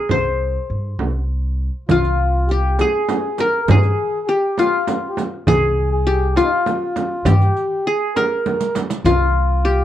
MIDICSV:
0, 0, Header, 1, 7, 480
1, 0, Start_track
1, 0, Tempo, 596421
1, 80, Time_signature, 6, 3, 24, 8
1, 7922, End_track
2, 0, Start_track
2, 0, Title_t, "Qanun"
2, 0, Program_c, 0, 107
2, 0, Note_on_c, 0, 68, 76
2, 0, Note_on_c, 0, 70, 75
2, 88, Note_on_c, 0, 72, 82
2, 529, Note_off_c, 0, 70, 0
2, 826, Note_off_c, 0, 68, 0
2, 1014, Note_off_c, 0, 72, 0
2, 1538, Note_on_c, 0, 65, 83
2, 2022, Note_on_c, 0, 67, 76
2, 2262, Note_on_c, 0, 68, 81
2, 2311, Note_off_c, 0, 67, 0
2, 2621, Note_off_c, 0, 65, 0
2, 2739, Note_on_c, 0, 70, 88
2, 2980, Note_off_c, 0, 68, 0
2, 2983, Note_on_c, 0, 68, 93
2, 3450, Note_on_c, 0, 67, 78
2, 3498, Note_off_c, 0, 68, 0
2, 3650, Note_off_c, 0, 70, 0
2, 3696, Note_on_c, 0, 65, 79
2, 4409, Note_on_c, 0, 68, 97
2, 4457, Note_off_c, 0, 67, 0
2, 4778, Note_off_c, 0, 65, 0
2, 4883, Note_on_c, 0, 67, 84
2, 4931, Note_off_c, 0, 68, 0
2, 5126, Note_on_c, 0, 65, 88
2, 5840, Note_off_c, 0, 67, 0
2, 5844, Note_on_c, 0, 67, 91
2, 6209, Note_off_c, 0, 65, 0
2, 6333, Note_on_c, 0, 68, 86
2, 6381, Note_off_c, 0, 67, 0
2, 6571, Note_on_c, 0, 70, 87
2, 7289, Note_on_c, 0, 65, 94
2, 7309, Note_off_c, 0, 68, 0
2, 7481, Note_off_c, 0, 70, 0
2, 7763, Note_on_c, 0, 67, 84
2, 7922, Note_off_c, 0, 65, 0
2, 7922, Note_off_c, 0, 67, 0
2, 7922, End_track
3, 0, Start_track
3, 0, Title_t, "Accordion"
3, 0, Program_c, 1, 21
3, 1520, Note_on_c, 1, 65, 74
3, 1993, Note_on_c, 1, 67, 71
3, 2016, Note_off_c, 1, 65, 0
3, 2239, Note_on_c, 1, 68, 79
3, 2245, Note_off_c, 1, 67, 0
3, 2724, Note_on_c, 1, 70, 68
3, 2736, Note_off_c, 1, 68, 0
3, 2897, Note_off_c, 1, 70, 0
3, 2909, Note_on_c, 1, 70, 52
3, 2962, Note_on_c, 1, 68, 79
3, 2964, Note_off_c, 1, 70, 0
3, 3440, Note_on_c, 1, 67, 78
3, 3458, Note_off_c, 1, 68, 0
3, 3684, Note_on_c, 1, 65, 70
3, 3689, Note_off_c, 1, 67, 0
3, 4096, Note_on_c, 1, 67, 63
3, 4117, Note_off_c, 1, 65, 0
3, 4212, Note_off_c, 1, 67, 0
3, 4406, Note_on_c, 1, 68, 75
3, 4746, Note_off_c, 1, 68, 0
3, 4758, Note_on_c, 1, 68, 78
3, 5117, Note_on_c, 1, 65, 73
3, 5132, Note_off_c, 1, 68, 0
3, 5174, Note_on_c, 1, 63, 64
3, 5179, Note_off_c, 1, 65, 0
3, 5233, Note_off_c, 1, 63, 0
3, 5236, Note_on_c, 1, 65, 80
3, 5838, Note_on_c, 1, 67, 79
3, 5862, Note_off_c, 1, 65, 0
3, 6323, Note_on_c, 1, 68, 77
3, 6336, Note_off_c, 1, 67, 0
3, 6564, Note_on_c, 1, 70, 84
3, 6571, Note_off_c, 1, 68, 0
3, 7072, Note_off_c, 1, 70, 0
3, 7282, Note_on_c, 1, 65, 86
3, 7922, Note_off_c, 1, 65, 0
3, 7922, End_track
4, 0, Start_track
4, 0, Title_t, "Upright bass"
4, 0, Program_c, 2, 32
4, 81, Note_on_c, 2, 36, 73
4, 449, Note_off_c, 2, 36, 0
4, 562, Note_on_c, 2, 43, 72
4, 746, Note_off_c, 2, 43, 0
4, 796, Note_on_c, 2, 36, 74
4, 1350, Note_off_c, 2, 36, 0
4, 1523, Note_on_c, 2, 36, 94
4, 2259, Note_off_c, 2, 36, 0
4, 2964, Note_on_c, 2, 43, 89
4, 3148, Note_off_c, 2, 43, 0
4, 4401, Note_on_c, 2, 36, 106
4, 5137, Note_off_c, 2, 36, 0
4, 5837, Note_on_c, 2, 43, 97
4, 6024, Note_off_c, 2, 43, 0
4, 7278, Note_on_c, 2, 36, 94
4, 7922, Note_off_c, 2, 36, 0
4, 7922, End_track
5, 0, Start_track
5, 0, Title_t, "Darbuka"
5, 1519, Note_on_c, 9, 64, 87
5, 1600, Note_off_c, 9, 64, 0
5, 1644, Note_on_c, 9, 62, 27
5, 1724, Note_off_c, 9, 62, 0
5, 1765, Note_on_c, 9, 62, 28
5, 1845, Note_off_c, 9, 62, 0
5, 2244, Note_on_c, 9, 63, 58
5, 2325, Note_off_c, 9, 63, 0
5, 2485, Note_on_c, 9, 63, 61
5, 2566, Note_off_c, 9, 63, 0
5, 2723, Note_on_c, 9, 63, 62
5, 2804, Note_off_c, 9, 63, 0
5, 2966, Note_on_c, 9, 64, 79
5, 3047, Note_off_c, 9, 64, 0
5, 3087, Note_on_c, 9, 62, 25
5, 3167, Note_off_c, 9, 62, 0
5, 3209, Note_on_c, 9, 62, 27
5, 3290, Note_off_c, 9, 62, 0
5, 3686, Note_on_c, 9, 63, 58
5, 3767, Note_off_c, 9, 63, 0
5, 3931, Note_on_c, 9, 63, 62
5, 4012, Note_off_c, 9, 63, 0
5, 4168, Note_on_c, 9, 63, 57
5, 4248, Note_off_c, 9, 63, 0
5, 4401, Note_on_c, 9, 64, 91
5, 4482, Note_off_c, 9, 64, 0
5, 4529, Note_on_c, 9, 62, 30
5, 4609, Note_off_c, 9, 62, 0
5, 4647, Note_on_c, 9, 62, 29
5, 4728, Note_off_c, 9, 62, 0
5, 5121, Note_on_c, 9, 63, 64
5, 5201, Note_off_c, 9, 63, 0
5, 5363, Note_on_c, 9, 63, 59
5, 5444, Note_off_c, 9, 63, 0
5, 5602, Note_on_c, 9, 63, 66
5, 5683, Note_off_c, 9, 63, 0
5, 5839, Note_on_c, 9, 64, 93
5, 5919, Note_off_c, 9, 64, 0
5, 5965, Note_on_c, 9, 62, 24
5, 6045, Note_off_c, 9, 62, 0
5, 6326, Note_on_c, 9, 62, 25
5, 6406, Note_off_c, 9, 62, 0
5, 6567, Note_on_c, 9, 63, 74
5, 6648, Note_off_c, 9, 63, 0
5, 6809, Note_on_c, 9, 63, 56
5, 6889, Note_off_c, 9, 63, 0
5, 6923, Note_on_c, 9, 62, 61
5, 7004, Note_off_c, 9, 62, 0
5, 7042, Note_on_c, 9, 63, 74
5, 7123, Note_off_c, 9, 63, 0
5, 7163, Note_on_c, 9, 62, 85
5, 7243, Note_off_c, 9, 62, 0
5, 7283, Note_on_c, 9, 64, 71
5, 7363, Note_off_c, 9, 64, 0
5, 7528, Note_on_c, 9, 62, 28
5, 7609, Note_off_c, 9, 62, 0
5, 7922, End_track
6, 0, Start_track
6, 0, Title_t, "Frame drum"
6, 74, Note_on_c, 9, 64, 78
6, 154, Note_off_c, 9, 64, 0
6, 799, Note_on_c, 9, 64, 69
6, 879, Note_off_c, 9, 64, 0
6, 1520, Note_on_c, 9, 64, 71
6, 1600, Note_off_c, 9, 64, 0
6, 2247, Note_on_c, 9, 64, 62
6, 2327, Note_off_c, 9, 64, 0
6, 2484, Note_on_c, 9, 64, 75
6, 2565, Note_off_c, 9, 64, 0
6, 2727, Note_on_c, 9, 64, 62
6, 2808, Note_off_c, 9, 64, 0
6, 2965, Note_on_c, 9, 64, 101
6, 3046, Note_off_c, 9, 64, 0
6, 3684, Note_on_c, 9, 64, 60
6, 3764, Note_off_c, 9, 64, 0
6, 3923, Note_on_c, 9, 64, 71
6, 4003, Note_off_c, 9, 64, 0
6, 4161, Note_on_c, 9, 64, 65
6, 4242, Note_off_c, 9, 64, 0
6, 4402, Note_on_c, 9, 64, 86
6, 4483, Note_off_c, 9, 64, 0
6, 5123, Note_on_c, 9, 64, 65
6, 5204, Note_off_c, 9, 64, 0
6, 5362, Note_on_c, 9, 64, 73
6, 5443, Note_off_c, 9, 64, 0
6, 5604, Note_on_c, 9, 64, 66
6, 5684, Note_off_c, 9, 64, 0
6, 5839, Note_on_c, 9, 64, 88
6, 5919, Note_off_c, 9, 64, 0
6, 6568, Note_on_c, 9, 64, 66
6, 6649, Note_off_c, 9, 64, 0
6, 6807, Note_on_c, 9, 64, 74
6, 6888, Note_off_c, 9, 64, 0
6, 7050, Note_on_c, 9, 64, 74
6, 7131, Note_off_c, 9, 64, 0
6, 7291, Note_on_c, 9, 64, 90
6, 7371, Note_off_c, 9, 64, 0
6, 7922, End_track
7, 0, Start_track
7, 0, Title_t, "Riq"
7, 1525, Note_on_c, 9, 54, 62
7, 1606, Note_off_c, 9, 54, 0
7, 1647, Note_on_c, 9, 54, 19
7, 1728, Note_off_c, 9, 54, 0
7, 2003, Note_on_c, 9, 54, 18
7, 2083, Note_off_c, 9, 54, 0
7, 2247, Note_on_c, 9, 54, 50
7, 2328, Note_off_c, 9, 54, 0
7, 2488, Note_on_c, 9, 54, 44
7, 2568, Note_off_c, 9, 54, 0
7, 2723, Note_on_c, 9, 54, 43
7, 2803, Note_off_c, 9, 54, 0
7, 2963, Note_on_c, 9, 54, 59
7, 3043, Note_off_c, 9, 54, 0
7, 3083, Note_on_c, 9, 54, 17
7, 3163, Note_off_c, 9, 54, 0
7, 3446, Note_on_c, 9, 54, 16
7, 3527, Note_off_c, 9, 54, 0
7, 3691, Note_on_c, 9, 54, 45
7, 3772, Note_off_c, 9, 54, 0
7, 3926, Note_on_c, 9, 54, 47
7, 4006, Note_off_c, 9, 54, 0
7, 4170, Note_on_c, 9, 54, 45
7, 4251, Note_off_c, 9, 54, 0
7, 4408, Note_on_c, 9, 54, 55
7, 4488, Note_off_c, 9, 54, 0
7, 4888, Note_on_c, 9, 54, 17
7, 4969, Note_off_c, 9, 54, 0
7, 5129, Note_on_c, 9, 54, 51
7, 5210, Note_off_c, 9, 54, 0
7, 5369, Note_on_c, 9, 54, 48
7, 5450, Note_off_c, 9, 54, 0
7, 5607, Note_on_c, 9, 54, 49
7, 5687, Note_off_c, 9, 54, 0
7, 5848, Note_on_c, 9, 54, 69
7, 5929, Note_off_c, 9, 54, 0
7, 5970, Note_on_c, 9, 54, 18
7, 6051, Note_off_c, 9, 54, 0
7, 6090, Note_on_c, 9, 54, 19
7, 6170, Note_off_c, 9, 54, 0
7, 6569, Note_on_c, 9, 54, 53
7, 6650, Note_off_c, 9, 54, 0
7, 6806, Note_on_c, 9, 54, 51
7, 6887, Note_off_c, 9, 54, 0
7, 6925, Note_on_c, 9, 54, 67
7, 7005, Note_off_c, 9, 54, 0
7, 7046, Note_on_c, 9, 54, 68
7, 7126, Note_off_c, 9, 54, 0
7, 7166, Note_on_c, 9, 54, 75
7, 7247, Note_off_c, 9, 54, 0
7, 7286, Note_on_c, 9, 54, 62
7, 7366, Note_off_c, 9, 54, 0
7, 7767, Note_on_c, 9, 54, 18
7, 7847, Note_off_c, 9, 54, 0
7, 7922, End_track
0, 0, End_of_file